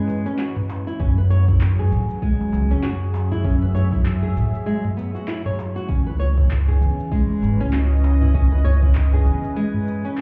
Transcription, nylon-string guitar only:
0.00 0.24 G#3 medium
0.26 0.38 C#4 loud
0.38 0.55 F#4 medium
0.87 0.98 E4 medium
1.00 1.10 C#4 medium
1.18 1.29 B4 medium
1.30 1.47 C#5 loud
1.48 1.60 E4 medium
1.79 2.21 G#4 medium
2.22 2.69 G#3 loud
2.71 2.83 C#4 loud
2.83 3.00 F#4 medium
3.32 3.43 E4 medium
3.44 3.55 C#4 medium
3.62 3.74 B4 medium
3.75 3.92 C#5 medium
3.92 4.05 E4 medium
4.23 4.65 G#4 medium
4.66 4.82 G#3 medium
4.97 5.13 B3 medium
5.15 5.26 F#4 medium
5.28 5.44 E4 medium
5.46 5.58 C#5 medium
5.76 5.88 F#4 loud
5.88 5.99 C#4 loud
6.07 6.18 B4 medium
6.19 6.37 C#5 loud
6.38 6.50 E4 medium
6.68 7.10 G#4 medium
7.12 7.58 G#3 loud
7.60 7.72 C#4 loud
7.72 7.90 F#4 medium
8.22 8.33 E4 medium
8.34 8.44 C#4 loud
8.52 8.64 B4 medium
8.64 8.82 C#5 loud
8.83 8.95 E4 medium
9.13 9.55 G#4 medium
9.56 10.03 G#3 loud
10.05 10.17 C#4 loud
10.18 10.21 F#4 medium

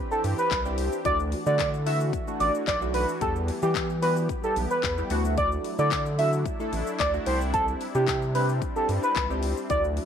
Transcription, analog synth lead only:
0.11 0.22 A4 medium
0.38 0.61 B4 medium
1.05 1.17 D5 loud
1.46 1.69 D5 medium
1.86 1.98 E5 medium
2.40 2.52 D5 medium
2.67 2.79 D5 medium
2.94 3.06 B4 medium
3.21 3.33 A4 loud
3.63 3.85 G4 medium
4.02 4.14 B4 medium
4.44 4.54 A4 medium
4.71 4.93 B4 medium
5.37 5.49 D5 loud
5.79 6.01 D5 medium
6.18 6.30 E5 medium
6.99 7.12 D5 medium
7.27 7.39 C5 medium
7.53 7.66 A4 loud
7.95 8.18 G4 medium
8.35 8.47 B4 medium
8.76 8.87 A4 medium
9.03 9.26 B4 medium
9.70 9.82 D5 loud

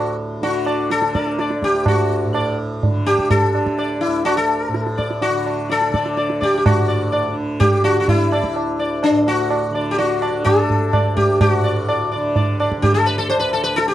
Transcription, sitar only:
0.00 0.15 F#4 medium
0.43 0.91 F#4 medium
0.67 0.89 D5 soft
0.91 1.64 A4 medium
1.15 1.37 D5 soft
1.39 1.61 D5 soft
1.64 1.88 G4 medium
1.88 2.55 F#4 medium
2.35 2.57 D5 soft
3.06 3.30 G4 medium
3.31 4.00 A4 medium
3.79 4.01 D5 soft
4.01 4.25 E4 medium
4.25 4.37 F#4 medium
4.37 5.05 A4 medium
4.98 5.20 D5 soft
5.22 5.71 F#4 medium
5.70 6.43 A4 medium
5.70 5.92 D5 soft
5.94 6.16 D5 soft
6.17 6.39 D5 soft
6.41 6.56 G4 medium
6.41 6.63 D5 soft
6.57 6.65 G4 soft
6.66 7.33 F#4 medium
6.88 7.11 D5 soft
7.12 7.35 D5 soft
7.60 7.84 G4 medium
7.84 7.99 F#4 medium
8.00 8.08 F#4 medium
8.09 9.00 E4 medium
8.33 8.55 D5 soft
8.79 9.02 D5 soft
9.04 9.28 D4 medium
9.28 9.72 F#4 medium
9.75 9.97 D5 soft
9.91 9.98 G4 medium
9.98 10.43 F#4 medium
10.22 10.44 D5 soft
10.45 11.16 A4 medium
10.93 11.16 D5 soft
11.17 11.40 G4 medium
11.41 11.52 G4 medium
11.52 12.08 F#4 medium
11.64 11.87 D5 soft
11.88 12.10 D5 soft
12.12 12.34 D5 soft
12.36 12.58 D5 soft
12.60 12.82 D5 soft
12.82 12.94 G4 medium
12.94 13.06 A4 medium
13.06 13.18 B4 medium
13.18 13.29 A4 medium
13.30 13.39 C5 medium
13.39 13.53 B4 medium
13.53 13.63 A4 medium
13.64 13.77 B4 medium
13.76 13.87 A4 medium
13.88 13.94 G4 medium

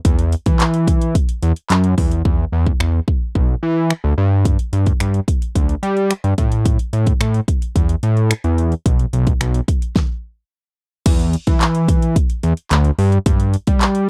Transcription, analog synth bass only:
0.05 0.35 E2 loud
0.46 1.16 E3 medium
1.43 1.53 E2 loud
1.70 1.95 F#2 medium
1.98 2.22 E2 medium
2.25 2.45 E2 loud
2.52 2.72 E2 loud
2.80 3.00 E2 medium
3.35 3.55 B1 loud
3.63 3.93 E3 loud
4.04 4.14 D2 medium
4.18 4.58 G2 loud
4.73 4.93 G2 medium
5.00 5.20 G2 medium
5.55 5.75 D2 loud
5.83 6.13 G3 loud
6.24 6.34 G2 medium
6.38 6.78 A2 loud
6.93 7.13 A2 loud
7.20 7.40 A2 loud
7.76 7.96 E2 loud
8.03 8.33 A2 loud
8.44 8.74 E2 medium
8.86 9.06 B1 medium
9.13 9.33 B1 loud
9.41 9.61 B1 loud
11.06 11.36 E2 loud
11.47 12.17 E3 medium
12.43 12.53 E2 loud
12.71 12.91 D2 loud
12.99 13.19 G2 loud
13.26 13.56 G2 loud
13.67 14.10 G3 medium

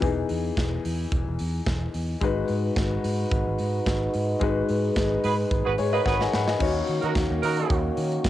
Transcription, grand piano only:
0.00 2.17 E3 medium
0.00 2.17 B3 medium
0.00 2.18 D#4 medium
0.00 2.18 G#4 medium
2.21 4.37 G#3 medium
2.21 4.37 D#4 medium
2.21 4.38 F#4 medium
2.21 4.38 B4 medium
4.40 6.56 G#3 medium
4.40 6.56 D#4 medium
4.40 6.57 F#4 medium
4.40 5.76 B4 medium
5.78 5.92 G#4 medium
5.78 5.92 C#5 medium
5.93 6.05 A#4 medium
5.93 6.05 D#5 medium
6.05 6.20 C#5 medium
6.05 6.19 F#5 medium
6.20 6.33 D#5 medium
6.20 6.32 G#5 medium
6.33 6.47 F#5 medium
6.33 6.47 B5 medium
6.47 6.74 D#5 medium
6.47 6.73 G#5 medium
6.59 8.29 D#3 medium
6.59 8.29 D#4 medium
6.59 8.29 F#4 medium
6.59 8.29 C#5 medium

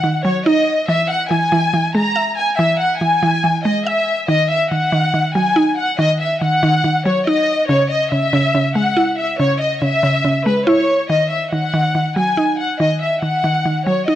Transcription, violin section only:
0.00 0.21 F#5 medium
0.24 0.41 C#5 medium
0.46 0.86 D#5 medium
0.88 1.05 E5 medium
1.10 1.27 F#5 medium
1.31 1.91 G#5 medium
1.95 2.35 A#5 medium
2.37 2.54 G#5 medium
2.59 2.75 E5 medium
2.80 2.97 F#5 medium
3.01 3.61 G#5 medium
3.65 3.82 D#5 medium
3.86 4.26 E5 medium
4.29 4.46 D#5 medium
4.50 4.67 E5 medium
4.71 5.31 F#5 medium
5.35 5.75 G#5 medium
5.78 5.95 F#5 medium
5.99 6.16 D#5 medium
6.20 6.37 E5 medium
6.42 7.02 F#5 medium
7.06 7.22 C#5 medium
7.27 7.67 D#5 medium
7.69 7.86 C#5 medium
7.90 8.07 D#5 medium
8.12 8.72 E5 medium
8.76 9.16 F#5 medium
9.18 9.35 E5 medium
9.39 9.56 C#5 medium
9.61 9.78 D#5 medium
9.82 10.42 E5 medium
10.46 10.63 B4 medium
10.67 11.07 C#5 medium
11.10 11.27 D#5 loud
11.31 11.48 E5 medium
11.52 12.12 F#5 medium
12.16 12.56 G#5 medium
12.59 12.76 F#5 medium
12.80 12.97 D#5 medium
13.01 13.18 E5 medium
13.23 13.82 F#5 medium
13.86 14.03 C#5 medium
14.07 14.15 D#5 medium

